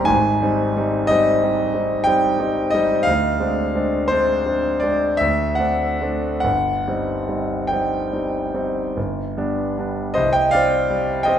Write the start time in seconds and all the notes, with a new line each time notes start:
Already playing: G3 C4 G4 G5 A#5 C6
0.04 G#1 G#2 G#5
0.42 G3 C4 D#4
0.76 G3 C4 D#4
1.07 G3 C4 D#4 D#5
1.43 G3 C4 D#4
1.74 G3 C4 D#4
2.04 G3 C4 D#4 G5
2.40 G3 C4 D#4
2.70 G3 D#5
2.75 C4 D#4
3.03 D2 F5
3.40 G#3 C4 D4
3.74 G#3 C4 D4
4.08 G#3 D4 C5
4.12 C4
4.46 G#3 C4 D4
4.80 G#3 C4 D5
4.84 D4
5.17 D2 E5
5.55 A3 C4 F#5
5.59 D4
6.01 A3 C4 D4
6.40 G1 F#5
6.87 G3 C4 D#4
7.29 G3 C4 D#4
7.67 G5
7.71 G3 C4 D#4
8.13 G3 C4 D#4
8.54 G3 C4 D#4
8.97 G1
9.37 G3 B3 D4
9.78 G3 B3 D4
10.14 C2 C5 D#5
10.33 D#5 G5
10.51 C4 D5 F5
10.90 G3
11.23 D#5 G5
11.28 C4